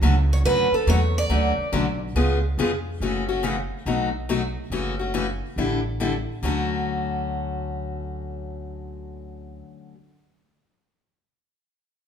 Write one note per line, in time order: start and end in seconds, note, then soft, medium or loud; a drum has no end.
0.01 0.43 C#2 loud
0.01 0.14 D3 medium
0.01 0.14 F#3 medium
0.01 0.14 A3 medium
0.01 0.14 C#4 medium
0.01 0.15 F#4 medium
0.33 0.38 C#5 medium
0.44 0.70 F#2 medium
0.44 0.67 D3 medium
0.44 0.68 F#3 medium
0.44 0.67 A3 medium
0.44 0.68 C#4 medium
0.44 0.68 F#4 medium
0.44 0.74 B4 loud
0.72 0.89 A4 medium
0.72 muted upright bass stroke soft
0.87 1.29 E2 medium
0.87 0.99 D3 medium
0.87 0.99 F#3 medium
0.87 1.00 A3 medium
0.87 1.00 C#4 medium
0.87 1.00 F#4 medium
0.87 1.17 C#5 loud
1.18 1.98 D5 medium
1.29 1.55 D2 medium
1.29 1.52 D3 medium
1.29 1.52 F#3 medium
1.29 1.52 A3 medium
1.29 1.52 C#4 medium
1.29 1.52 F#4 medium
1.58 muted upright bass stroke soft
1.72 2.14 B1 loud
1.72 1.84 D3 medium
1.72 1.84 F#3 medium
1.72 1.85 A3 medium
1.72 1.85 C#4 medium
1.72 1.85 F#4 medium
2.15 2.57 C#2 medium
2.15 2.38 C#3 medium
2.15 2.38 G#3 medium
2.15 2.38 B3 medium
2.15 2.38 F4 medium
2.15 2.38 G#4 medium
2.58 2.99 F2 medium
2.58 2.70 C#3 medium
2.58 2.70 G#3 medium
2.58 2.71 B3 medium
2.58 2.70 F4 medium
2.58 2.71 G#4 medium
3.00 3.69 F#1 medium
3.00 3.23 C#3 soft
3.00 3.23 E3 medium
3.00 3.24 A3 medium
3.00 3.24 C#4 medium
3.00 3.24 F#4 medium
3.29 3.43 A3 soft
3.29 3.43 C#4 soft
3.29 3.43 F#4 medium
3.43 3.55 C#3 medium
3.43 3.55 E3 medium
3.43 3.55 A3 medium
3.43 3.56 C#4 medium
3.43 3.56 F#4 medium
3.86 4.54 B1 medium
3.86 4.08 B2 medium
3.86 4.08 F#3 medium
3.86 4.09 A3 medium
3.86 4.09 D#4 medium
3.86 4.09 F#4 medium
4.29 4.41 B2 medium
4.29 4.41 F#3 medium
4.29 4.41 A3 medium
4.29 4.41 D#4 medium
4.29 4.41 F#4 medium
4.70 5.39 F#1 medium
4.70 4.94 C#3 medium
4.70 4.94 E3 medium
4.70 4.94 A3 medium
4.70 4.94 C#4 medium
4.70 4.94 F#4 medium
4.99 5.13 A3 soft
4.99 5.13 C#4 soft
4.99 5.13 F#4 soft
5.14 5.26 C#3 medium
5.14 5.26 E3 medium
5.14 5.26 A3 medium
5.14 5.26 C#4 medium
5.14 5.26 F#4 medium
5.56 6.25 A1 medium
5.56 5.79 D3 medium
5.56 5.80 G3 medium
5.56 5.80 D4 medium
5.56 5.80 E4 medium
5.56 5.80 A4 medium
6.00 6.12 D3 medium
6.00 6.12 G3 medium
6.00 6.12 D4 medium
6.00 6.12 E4 medium
6.00 6.12 A4 medium
6.42 9.60 D2 medium
6.42 9.93 D3 medium
6.42 9.93 F#3 medium
6.42 9.94 A3 medium
6.42 9.95 C#4 medium
6.42 9.96 F#4 medium